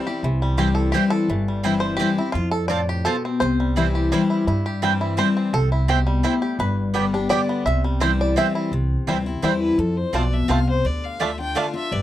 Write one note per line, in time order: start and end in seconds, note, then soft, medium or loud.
0.00 0.23 G3 medium
0.00 0.20 C4 medium
0.07 0.24 C4 medium
0.07 0.23 E4 medium
0.07 0.24 G4 medium
0.23 0.92 C2 medium
0.23 0.91 C3 medium
0.23 0.74 E3 medium
0.42 0.91 G3 medium
0.57 0.92 E3 medium
0.57 0.92 G3 medium
0.57 0.68 C4 medium
0.57 0.92 C4 medium
0.57 0.68 E4 medium
0.57 0.93 E4 loud
0.57 0.75 G4 medium
0.57 0.68 C5 loud
0.57 0.68 G5 loud
0.75 0.93 A4 medium
0.92 1.28 E3 medium
0.92 1.28 G3 loud
0.92 1.03 C4 medium
0.92 1.28 C4 loud
0.92 1.03 E4 medium
0.92 1.12 G4 medium
0.92 1.03 C5 loud
0.92 1.03 G5 loud
0.97 1.29 E4 loud
1.10 1.60 A4 medium
1.28 1.97 G1 medium
1.28 1.97 G2 medium
1.28 1.79 E3 medium
1.48 1.97 G3 medium
1.63 1.98 E3 medium
1.63 1.98 G3 medium
1.63 1.73 C4 medium
1.63 1.99 C4 medium
1.63 1.74 E4 loud
1.63 2.15 E4 medium
1.63 1.99 E4 medium
1.63 1.74 C5 loud
1.63 1.74 G5 loud
1.80 1.99 C5 medium
1.97 2.17 E3 medium
1.97 2.18 G3 medium
1.97 2.09 C4 medium
1.97 2.09 E4 loud
1.97 2.31 G4 medium
1.97 2.09 C5 loud
1.97 2.10 G5 loud
2.01 2.18 C4 medium
2.01 2.17 E4 loud
2.18 2.35 C4 medium
2.18 2.34 E4 medium
2.18 2.32 E4 medium
2.32 3.03 F2 loud
2.32 3.02 F2 medium
2.32 2.51 F4 loud
2.51 2.68 A4 loud
2.68 3.04 A2 medium
2.68 2.79 C4 medium
2.68 2.80 F4 medium
2.68 2.80 C5 medium
2.68 2.86 D5 loud
2.68 2.80 A5 loud
2.89 3.38 G4 medium
3.05 3.39 B2 medium
3.05 3.15 C4 medium
3.05 3.15 F4 loud
3.05 3.25 A4 loud
3.05 3.15 C5 loud
3.05 3.16 A5 loud
3.25 4.65 C4 medium
3.40 4.10 C2 medium
3.40 4.09 C3 loud
3.40 3.74 C5 loud
3.60 4.11 G3 medium
3.76 4.10 E3 medium
3.76 4.10 G3 medium
3.76 3.86 C4 medium
3.76 4.11 C4 medium
3.76 3.86 E4 medium
3.76 4.30 E4 medium
3.76 4.11 E4 loud
3.76 3.86 C5 loud
3.76 3.86 G5 medium
3.95 4.65 G4 medium
4.12 4.46 E3 medium
4.12 4.82 G3 medium
4.12 4.46 G3 loud
4.12 4.21 C4 medium
4.12 4.46 C4 loud
4.12 4.21 E4 loud
4.12 4.47 E4 loud
4.12 4.22 C5 loud
4.12 4.22 G5 loud
4.30 4.46 E4 medium
4.47 5.16 G2 medium
4.47 5.15 G2 medium
4.47 4.97 E4 medium
4.66 5.57 G4 medium
4.82 5.16 E3 medium
4.82 5.57 G3 medium
4.82 5.17 G3 medium
4.82 4.92 C4 loud
4.82 5.17 C4 medium
4.82 4.92 E4 medium
4.82 5.17 E4 medium
4.82 4.92 C5 loud
4.82 4.92 G5 loud
5.01 5.50 E4 medium
5.17 5.51 E3 medium
5.17 5.52 G3 loud
5.17 5.27 C4 loud
5.17 5.52 C4 loud
5.17 5.27 E4 loud
5.17 5.52 E4 medium
5.17 5.28 C5 loud
5.17 5.36 C5 loud
5.17 5.27 G5 loud
5.37 5.86 C4 medium
5.53 6.22 C2 loud
5.53 6.21 C3 medium
5.53 5.72 A4 loud
5.72 6.21 E4 medium
5.88 6.22 B2 medium
5.88 5.98 C4 loud
5.88 5.98 E4 medium
5.88 6.42 G4 medium
5.88 5.98 C5 loud
5.88 5.99 G5 loud
6.07 6.94 G3 medium
6.23 6.58 A2 medium
6.23 6.33 C4 medium
6.23 6.33 E4 loud
6.23 6.60 E4 medium
6.23 6.33 C5 loud
6.23 6.34 G5 loud
6.42 6.58 G4 medium
6.59 7.28 G1 loud
6.59 7.27 G2 loud
6.59 7.33 B4 loud
6.94 7.13 D3 medium
6.94 7.84 G3 medium
6.94 7.13 G3 medium
6.94 7.04 B3 medium
6.94 7.13 B3 medium
6.94 7.04 G4 loud
6.94 7.13 G4 medium
6.94 7.04 D5 medium
6.94 7.04 G5 medium
7.14 7.31 B3 medium
7.14 7.30 D4 medium
7.14 7.30 G4 medium
7.29 7.64 D3 loud
7.29 7.65 G3 loud
7.29 7.39 B3 loud
7.29 7.65 B3 loud
7.29 7.39 G4 loud
7.29 7.65 G4 loud
7.29 7.63 D5 loud
7.29 7.40 D5 loud
7.29 7.40 G5 loud
7.49 7.66 B3 medium
7.65 8.34 C2 loud
7.65 8.34 C3 loud
7.65 7.83 E5 loud
7.84 8.33 G3 medium
8.00 8.35 E3 medium
8.00 8.36 G3 medium
8.00 8.10 C4 loud
8.00 8.36 C4 medium
8.00 8.10 E4 loud
8.00 8.36 E4 loud
8.00 8.11 C5 loud
8.00 8.20 C5 loud
8.00 8.11 G5 loud
8.21 8.36 D5 medium
8.36 8.70 E3 medium
8.36 8.71 G3 loud
8.36 8.46 C4 loud
8.36 8.71 C4 loud
8.36 8.46 E4 loud
8.36 8.71 E4 loud
8.36 8.46 C5 loud
8.36 8.54 E5 loud
8.36 8.46 G5 medium
8.55 8.72 E4 medium
8.72 8.95 C2 loud
8.72 9.40 C3 medium
9.07 9.37 D2 medium
9.07 9.25 E3 medium
9.07 9.26 G3 medium
9.07 9.16 G3 medium
9.07 9.17 C4 medium
9.07 9.26 C4 medium
9.07 9.16 C4 medium
9.07 9.17 E4 medium
9.07 9.25 E4 medium
9.07 9.17 E4 medium
9.07 9.17 C5 medium
9.07 9.17 G5 medium
9.26 9.42 C4 soft
9.26 9.42 E4 medium
9.42 9.73 E2 medium
9.42 9.76 E3 medium
9.42 9.77 G3 medium
9.42 9.51 G3 medium
9.42 9.52 C4 medium
9.42 9.77 C4 medium
9.42 9.52 C4 medium
9.42 9.52 E4 medium
9.42 9.77 E4 loud
9.42 9.52 E4 medium
9.42 9.60 C5 medium
9.42 9.53 C5 medium
9.42 9.53 G5 medium
9.62 9.80 B4 medium
9.78 10.01 F2 medium
9.78 10.46 F2 medium
9.78 9.99 A4 medium
9.97 10.15 C5 medium
10.13 10.44 B1 medium
10.13 10.48 B2 medium
10.13 10.23 A3 medium
10.13 10.23 C4 medium
10.13 10.23 F4 medium
10.13 10.23 C5 medium
10.13 10.35 D5 medium
10.13 10.23 A5 loud
10.33 10.52 E5 medium
10.48 10.79 C2 medium
10.48 10.83 C3 loud
10.48 10.58 A3 medium
10.48 10.58 C4 medium
10.48 10.58 F4 medium
10.48 10.59 C5 loud
10.48 10.69 F5 loud
10.48 10.59 A5 loud
10.69 10.87 C5 loud
10.84 11.54 D2 medium
10.84 11.19 D3 medium
10.84 11.05 D5 medium
11.04 11.23 F5 medium
11.20 11.38 D3 medium
11.20 11.29 A3 medium
11.20 11.38 A3 medium
11.20 11.29 A3 medium
11.20 11.39 D4 medium
11.20 11.24 D4 medium
11.20 11.30 F4 medium
11.20 11.36 F4 medium
11.20 11.30 D5 medium
11.20 11.39 E5 medium
11.20 11.30 A5 loud
11.38 11.55 D4 medium
11.38 11.55 F4 medium
11.38 11.58 G5 loud
11.55 11.73 D3 loud
11.55 11.65 A3 medium
11.55 11.74 A3 medium
11.55 11.65 A3 medium
11.55 11.74 D4 loud
11.55 11.60 D4 medium
11.55 11.65 F4 medium
11.55 11.72 F4 medium
11.55 11.66 D5 loud
11.55 11.75 F5 medium
11.55 11.66 A5 loud
11.73 11.91 D4 medium
11.73 11.90 F4 medium
11.73 11.93 E5 medium
11.91 12.02 G1 loud
11.91 12.02 G2 medium
11.91 12.02 D5 medium